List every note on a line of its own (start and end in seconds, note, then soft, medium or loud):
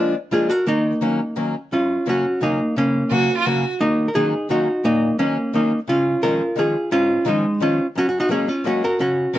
0.00 0.14 F3 medium
0.00 0.14 G#3 medium
0.00 0.14 A#3 medium
0.00 0.12 D4 medium
0.00 0.14 D4 medium
0.00 0.13 F4 loud
0.31 0.49 F3 medium
0.31 0.49 G#3 medium
0.31 0.49 A#3 medium
0.31 0.49 D4 medium
0.31 0.48 F4 medium
0.31 0.51 G#4 medium
0.50 0.65 F#4 medium
0.50 0.67 A#4 medium
0.66 0.92 D#3 medium
0.66 1.51 A#3 medium
0.66 1.51 D#4 medium
1.01 1.19 D#3 medium
1.01 1.19 F#3 medium
1.01 1.19 A#3 medium
1.01 1.19 C#4 medium
1.36 1.54 D#3 medium
1.36 1.54 F#3 medium
1.36 1.54 A#3 soft
1.36 1.54 C#4 medium
1.72 1.98 F#2 medium
1.72 2.05 C#4 medium
1.72 2.08 F4 medium
2.06 2.24 C#3 medium
2.06 2.24 F#3 medium
2.06 2.24 A#3 medium
2.06 2.24 C#4 medium
2.06 2.40 C#4 medium
2.10 2.44 F#4 medium
2.41 2.58 C#3 soft
2.41 2.59 F#3 soft
2.41 2.59 A#3 medium
2.41 2.75 A#3 medium
2.41 2.59 C#4 medium
2.41 2.77 D#4 medium
2.76 3.02 C#3 medium
2.76 3.43 A#3 medium
2.76 3.42 C#4 medium
3.11 3.28 C#3 medium
3.11 3.29 F#3 medium
3.11 3.29 A#3 medium
3.11 3.29 C#4 medium
3.11 3.35 F#4 medium
3.37 3.47 F4 medium
3.45 3.63 C#3 medium
3.45 3.63 F#3 medium
3.45 3.63 A#3 medium
3.45 3.64 C#4 medium
3.45 3.71 F#4 medium
3.81 4.07 D#3 medium
3.81 4.06 A#3 medium
3.81 4.09 D#4 medium
4.08 4.15 A#4 medium
4.15 4.33 D#3 medium
4.15 4.33 F#3 medium
4.15 4.33 A#3 medium
4.15 4.33 C#4 medium
4.15 4.47 D#4 medium
4.15 4.50 G#4 medium
4.49 4.67 D#3 medium
4.49 4.67 F#3 medium
4.49 4.67 A#3 medium
4.49 4.67 C#4 medium
4.49 4.82 D#4 medium
4.49 4.85 F#4 medium
4.84 5.10 A#2 medium
4.84 5.16 A#3 medium
4.84 5.16 D#4 medium
5.19 5.36 D#3 medium
5.19 5.36 F#3 medium
5.19 5.51 A#3 medium
5.19 5.36 A#3 medium
5.19 5.55 C#4 medium
5.19 5.37 C#4 medium
5.53 5.71 D#3 soft
5.53 5.71 F#3 soft
5.53 5.71 A#3 medium
5.53 5.79 A#3 medium
5.53 5.71 C#4 medium
5.53 5.79 D#4 medium
5.88 6.14 C#3 medium
5.88 6.21 C#4 medium
5.88 6.23 F4 loud
6.23 6.40 D#3 medium
6.23 6.41 F3 medium
6.23 6.41 G#3 medium
6.23 6.41 C#4 medium
6.23 6.55 F4 medium
6.23 6.59 A#4 medium
6.56 6.74 D#3 medium
6.56 6.74 F3 soft
6.56 6.75 G#3 soft
6.56 6.75 C#4 medium
6.56 6.90 F4 medium
6.56 6.92 G#4 medium
6.91 7.17 G#2 medium
6.91 7.25 C#4 medium
6.91 7.28 F4 loud
7.25 7.43 D#3 medium
7.25 7.44 F3 medium
7.25 7.44 G#3 medium
7.25 7.59 G#3 medium
7.25 7.44 C#4 medium
7.25 7.62 D#4 medium
7.60 7.78 D#3 medium
7.60 7.79 F3 medium
7.60 7.79 G#3 medium
7.60 7.79 C#4 medium
7.60 7.86 C#4 medium
7.60 7.86 F4 medium
7.95 8.21 F#2 medium
7.95 8.07 C#4 medium
7.95 8.08 F#4 medium
8.09 8.19 F#4 medium
8.20 8.30 D#4 medium
8.20 8.31 F#4 medium
8.29 8.47 F#3 medium
8.29 8.47 G#3 medium
8.29 8.47 A#3 medium
8.29 8.48 C#4 medium
8.29 8.47 C#4 medium
8.29 8.49 G#4 medium
8.48 8.64 C#4 medium
8.48 8.66 F4 medium
8.64 8.82 F#3 soft
8.64 8.82 G#3 soft
8.64 8.82 A#3 medium
8.64 8.82 C#4 medium
8.64 8.83 F#4 medium
8.84 8.99 F#4 medium
8.84 9.01 A#4 medium
8.99 9.25 C#3 medium
8.99 9.38 C#4 medium
8.99 9.38 F#4 medium
9.33 9.38 F#3 medium
9.33 9.38 G#3 medium
9.33 9.38 A#3 medium
9.33 9.38 C#4 medium
9.33 9.38 A#4 medium